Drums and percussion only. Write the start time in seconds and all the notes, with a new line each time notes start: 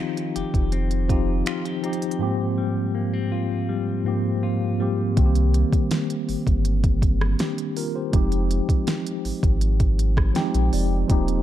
0.17 closed hi-hat
0.36 closed hi-hat
0.54 kick, closed hi-hat
0.72 closed hi-hat
0.91 closed hi-hat
1.09 kick, closed hi-hat
1.46 finger snap, closed hi-hat
1.65 closed hi-hat
1.84 closed hi-hat
1.93 closed hi-hat
2.02 closed hi-hat
2.11 closed hi-hat
5.17 kick, closed hi-hat
5.35 closed hi-hat
5.54 closed hi-hat
5.73 kick, closed hi-hat
5.91 snare, closed hi-hat
6.10 closed hi-hat
6.29 open hi-hat
6.47 kick, closed hi-hat
6.65 closed hi-hat
6.84 kick, closed hi-hat
7.02 kick, closed hi-hat
7.21 cross-stick
7.39 snare, closed hi-hat
7.58 closed hi-hat
7.77 open hi-hat
8.13 kick, closed hi-hat
8.32 closed hi-hat
8.51 closed hi-hat
8.69 kick, closed hi-hat
8.87 snare, closed hi-hat
9.07 closed hi-hat
9.25 open hi-hat
9.43 kick, closed hi-hat
9.61 closed hi-hat
9.80 kick, closed hi-hat
9.99 closed hi-hat
10.17 kick, cross-stick
10.35 snare, closed hi-hat
10.54 closed hi-hat
10.73 open hi-hat
11.10 kick, closed hi-hat
11.28 closed hi-hat